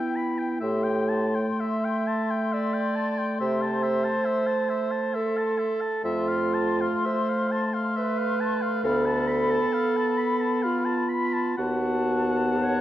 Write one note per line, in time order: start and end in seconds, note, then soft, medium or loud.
0.00 0.63 B3 soft
0.00 0.62 E4 medium
0.00 0.17 G5 soft
0.00 0.58 G5 soft
0.16 0.40 B5 soft
0.38 0.60 G5 soft
0.60 1.45 A2 soft
0.60 5.77 A3 soft
0.60 1.31 G4 medium
0.60 0.85 E5 soft
0.60 5.74 C6 soft
0.84 1.10 G5 soft
1.09 1.37 A5 soft
1.35 1.62 G5 soft
1.60 1.86 E5 soft
1.60 2.55 E5 medium
1.85 2.09 G5 soft
2.07 2.32 A5 soft
2.31 2.54 G5 soft
2.53 3.40 D5 medium
2.53 2.75 E5 soft
2.74 2.97 G5 soft
2.96 3.20 A5 soft
3.18 3.40 G5 soft
3.40 4.12 C3 medium
3.40 5.17 C5 medium
3.40 3.63 E5 soft
3.62 3.85 A5 soft
3.83 4.06 E5 soft
4.05 4.27 A5 soft
4.25 4.49 E5 soft
4.47 4.71 A5 soft
4.70 4.93 E5 soft
4.91 5.16 A5 soft
5.14 6.04 A4 medium
5.14 5.39 E5 soft
5.37 5.60 A5 soft
5.59 5.83 E5 soft
5.81 6.04 A5 soft
6.04 6.89 F2 medium
6.04 8.86 A3 medium
6.04 7.08 F4 medium
6.04 6.30 E5 medium
6.04 8.81 C6 medium
6.29 6.55 F5 soft
6.54 6.83 A5 soft
6.81 7.07 F5 soft
7.06 7.71 C5 medium
7.06 7.31 E5 soft
7.30 7.53 F5 soft
7.52 7.76 A5 soft
7.74 7.98 F5 soft
7.97 8.87 B4 medium
7.97 8.20 E5 soft
8.18 8.42 F5 soft
8.41 8.63 A5 soft
8.62 8.83 F5 soft
8.84 9.58 D2 medium
8.84 11.58 B3 medium
8.84 10.66 A4 medium
8.84 9.07 F5 medium
8.84 11.54 B5 medium
9.06 9.29 A5 soft
9.28 9.52 B5 soft
9.51 9.75 A5 soft
9.73 9.98 F5 soft
9.97 10.19 A5 soft
10.18 10.42 B5 soft
10.41 10.64 A5 soft
10.63 11.58 F4 medium
10.63 10.87 F5 soft
10.85 11.10 A5 soft
11.09 11.35 B5 medium
11.33 11.57 A5 soft
11.57 12.81 D#2 medium
11.57 12.81 B3 medium
11.57 12.63 F#4 medium
11.57 12.81 F#5 medium
11.57 12.81 A5 medium
12.62 12.81 C#5 medium